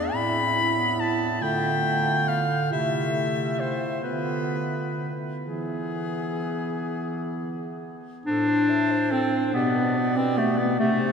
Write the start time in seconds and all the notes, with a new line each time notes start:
Already playing: E2 D4 G#4 D5
0.12 A2 C4 E4 B5
0.78 B3
1.00 A5
1.41 D3 A3 F4 G5
2.28 F5
2.70 C3 A3 E4 E5
3.60 C5
4.02 D3 B3 F4 B4
5.43 E3 B3 E4 G#4
8.26 A2 D4 A4 C5
8.48 C5
8.69 E5
8.91 C5
9.11 C4 A4
9.32 C5
9.54 B2 B3 G4 D5
9.76 B4
9.96 D5
10.17 C4 B4
10.37 A3 G4
10.58 B3 B4
10.79 C3 A3 G4 E5
10.99 C5